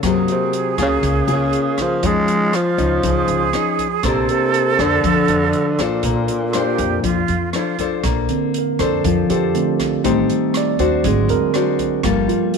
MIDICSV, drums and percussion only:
0, 0, Header, 1, 2, 480
1, 0, Start_track
1, 0, Key_signature, -2, "major"
1, 0, Tempo, 500417
1, 31, Time_signature, 4, 2, 24, 8
1, 12065, End_track
2, 0, Start_track
2, 0, Title_t, "Drums"
2, 28, Note_on_c, 9, 37, 56
2, 28, Note_on_c, 9, 42, 51
2, 31, Note_on_c, 9, 36, 55
2, 124, Note_off_c, 9, 37, 0
2, 124, Note_off_c, 9, 42, 0
2, 127, Note_off_c, 9, 36, 0
2, 270, Note_on_c, 9, 42, 40
2, 366, Note_off_c, 9, 42, 0
2, 510, Note_on_c, 9, 42, 39
2, 606, Note_off_c, 9, 42, 0
2, 749, Note_on_c, 9, 36, 19
2, 749, Note_on_c, 9, 37, 54
2, 749, Note_on_c, 9, 42, 37
2, 845, Note_off_c, 9, 36, 0
2, 845, Note_off_c, 9, 37, 0
2, 845, Note_off_c, 9, 42, 0
2, 988, Note_on_c, 9, 42, 49
2, 989, Note_on_c, 9, 36, 48
2, 1084, Note_off_c, 9, 42, 0
2, 1085, Note_off_c, 9, 36, 0
2, 1227, Note_on_c, 9, 42, 40
2, 1323, Note_off_c, 9, 42, 0
2, 1467, Note_on_c, 9, 42, 41
2, 1563, Note_off_c, 9, 42, 0
2, 1705, Note_on_c, 9, 37, 50
2, 1705, Note_on_c, 9, 42, 41
2, 1708, Note_on_c, 9, 36, 22
2, 1801, Note_off_c, 9, 37, 0
2, 1801, Note_off_c, 9, 42, 0
2, 1803, Note_off_c, 9, 36, 0
2, 1946, Note_on_c, 9, 42, 54
2, 1948, Note_on_c, 9, 36, 58
2, 2042, Note_off_c, 9, 42, 0
2, 2044, Note_off_c, 9, 36, 0
2, 2186, Note_on_c, 9, 42, 40
2, 2282, Note_off_c, 9, 42, 0
2, 2429, Note_on_c, 9, 37, 56
2, 2429, Note_on_c, 9, 42, 42
2, 2525, Note_off_c, 9, 37, 0
2, 2525, Note_off_c, 9, 42, 0
2, 2669, Note_on_c, 9, 36, 22
2, 2671, Note_on_c, 9, 42, 35
2, 2765, Note_off_c, 9, 36, 0
2, 2766, Note_off_c, 9, 42, 0
2, 2910, Note_on_c, 9, 36, 52
2, 2910, Note_on_c, 9, 42, 50
2, 3006, Note_off_c, 9, 36, 0
2, 3006, Note_off_c, 9, 42, 0
2, 3145, Note_on_c, 9, 42, 37
2, 3241, Note_off_c, 9, 42, 0
2, 3388, Note_on_c, 9, 37, 53
2, 3388, Note_on_c, 9, 42, 37
2, 3483, Note_off_c, 9, 37, 0
2, 3483, Note_off_c, 9, 42, 0
2, 3632, Note_on_c, 9, 36, 22
2, 3634, Note_on_c, 9, 42, 38
2, 3728, Note_off_c, 9, 36, 0
2, 3730, Note_off_c, 9, 42, 0
2, 3867, Note_on_c, 9, 37, 54
2, 3867, Note_on_c, 9, 42, 55
2, 3870, Note_on_c, 9, 36, 53
2, 3963, Note_off_c, 9, 37, 0
2, 3963, Note_off_c, 9, 42, 0
2, 3966, Note_off_c, 9, 36, 0
2, 4113, Note_on_c, 9, 42, 37
2, 4209, Note_off_c, 9, 42, 0
2, 4353, Note_on_c, 9, 42, 40
2, 4449, Note_off_c, 9, 42, 0
2, 4592, Note_on_c, 9, 36, 21
2, 4595, Note_on_c, 9, 37, 49
2, 4595, Note_on_c, 9, 42, 35
2, 4688, Note_off_c, 9, 36, 0
2, 4691, Note_off_c, 9, 37, 0
2, 4691, Note_off_c, 9, 42, 0
2, 4831, Note_on_c, 9, 36, 52
2, 4833, Note_on_c, 9, 42, 51
2, 4927, Note_off_c, 9, 36, 0
2, 4929, Note_off_c, 9, 42, 0
2, 5065, Note_on_c, 9, 42, 40
2, 5161, Note_off_c, 9, 42, 0
2, 5306, Note_on_c, 9, 42, 37
2, 5402, Note_off_c, 9, 42, 0
2, 5548, Note_on_c, 9, 36, 20
2, 5550, Note_on_c, 9, 37, 52
2, 5550, Note_on_c, 9, 42, 41
2, 5644, Note_off_c, 9, 36, 0
2, 5646, Note_off_c, 9, 37, 0
2, 5646, Note_off_c, 9, 42, 0
2, 5783, Note_on_c, 9, 42, 56
2, 5787, Note_on_c, 9, 36, 60
2, 5879, Note_off_c, 9, 42, 0
2, 5883, Note_off_c, 9, 36, 0
2, 6026, Note_on_c, 9, 42, 39
2, 6122, Note_off_c, 9, 42, 0
2, 6267, Note_on_c, 9, 37, 56
2, 6267, Note_on_c, 9, 42, 45
2, 6363, Note_off_c, 9, 37, 0
2, 6363, Note_off_c, 9, 42, 0
2, 6508, Note_on_c, 9, 42, 37
2, 6509, Note_on_c, 9, 36, 22
2, 6604, Note_off_c, 9, 42, 0
2, 6605, Note_off_c, 9, 36, 0
2, 6749, Note_on_c, 9, 36, 53
2, 6751, Note_on_c, 9, 42, 52
2, 6845, Note_off_c, 9, 36, 0
2, 6847, Note_off_c, 9, 42, 0
2, 6985, Note_on_c, 9, 42, 40
2, 7081, Note_off_c, 9, 42, 0
2, 7225, Note_on_c, 9, 37, 53
2, 7225, Note_on_c, 9, 42, 36
2, 7321, Note_off_c, 9, 37, 0
2, 7321, Note_off_c, 9, 42, 0
2, 7469, Note_on_c, 9, 36, 22
2, 7469, Note_on_c, 9, 42, 40
2, 7565, Note_off_c, 9, 36, 0
2, 7565, Note_off_c, 9, 42, 0
2, 7708, Note_on_c, 9, 37, 56
2, 7708, Note_on_c, 9, 42, 54
2, 7710, Note_on_c, 9, 36, 59
2, 7803, Note_off_c, 9, 37, 0
2, 7803, Note_off_c, 9, 42, 0
2, 7806, Note_off_c, 9, 36, 0
2, 7949, Note_on_c, 9, 42, 38
2, 8045, Note_off_c, 9, 42, 0
2, 8193, Note_on_c, 9, 42, 41
2, 8289, Note_off_c, 9, 42, 0
2, 8433, Note_on_c, 9, 36, 22
2, 8433, Note_on_c, 9, 37, 49
2, 8433, Note_on_c, 9, 42, 39
2, 8529, Note_off_c, 9, 36, 0
2, 8529, Note_off_c, 9, 37, 0
2, 8529, Note_off_c, 9, 42, 0
2, 8675, Note_on_c, 9, 36, 54
2, 8675, Note_on_c, 9, 42, 54
2, 8771, Note_off_c, 9, 36, 0
2, 8771, Note_off_c, 9, 42, 0
2, 8919, Note_on_c, 9, 42, 43
2, 9014, Note_off_c, 9, 42, 0
2, 9157, Note_on_c, 9, 42, 41
2, 9253, Note_off_c, 9, 42, 0
2, 9395, Note_on_c, 9, 36, 23
2, 9396, Note_on_c, 9, 37, 55
2, 9396, Note_on_c, 9, 42, 44
2, 9491, Note_off_c, 9, 36, 0
2, 9492, Note_off_c, 9, 37, 0
2, 9492, Note_off_c, 9, 42, 0
2, 9635, Note_on_c, 9, 36, 58
2, 9636, Note_on_c, 9, 42, 58
2, 9731, Note_off_c, 9, 36, 0
2, 9732, Note_off_c, 9, 42, 0
2, 9875, Note_on_c, 9, 42, 41
2, 9971, Note_off_c, 9, 42, 0
2, 10111, Note_on_c, 9, 37, 60
2, 10111, Note_on_c, 9, 42, 45
2, 10207, Note_off_c, 9, 37, 0
2, 10207, Note_off_c, 9, 42, 0
2, 10350, Note_on_c, 9, 42, 38
2, 10352, Note_on_c, 9, 36, 21
2, 10446, Note_off_c, 9, 42, 0
2, 10448, Note_off_c, 9, 36, 0
2, 10590, Note_on_c, 9, 42, 51
2, 10592, Note_on_c, 9, 36, 54
2, 10686, Note_off_c, 9, 42, 0
2, 10688, Note_off_c, 9, 36, 0
2, 10830, Note_on_c, 9, 42, 42
2, 10926, Note_off_c, 9, 42, 0
2, 11067, Note_on_c, 9, 37, 51
2, 11067, Note_on_c, 9, 42, 38
2, 11163, Note_off_c, 9, 37, 0
2, 11163, Note_off_c, 9, 42, 0
2, 11309, Note_on_c, 9, 36, 24
2, 11309, Note_on_c, 9, 42, 39
2, 11405, Note_off_c, 9, 36, 0
2, 11405, Note_off_c, 9, 42, 0
2, 11543, Note_on_c, 9, 37, 62
2, 11543, Note_on_c, 9, 42, 55
2, 11547, Note_on_c, 9, 36, 61
2, 11639, Note_off_c, 9, 37, 0
2, 11639, Note_off_c, 9, 42, 0
2, 11643, Note_off_c, 9, 36, 0
2, 11791, Note_on_c, 9, 42, 38
2, 11887, Note_off_c, 9, 42, 0
2, 12026, Note_on_c, 9, 42, 42
2, 12065, Note_off_c, 9, 42, 0
2, 12065, End_track
0, 0, End_of_file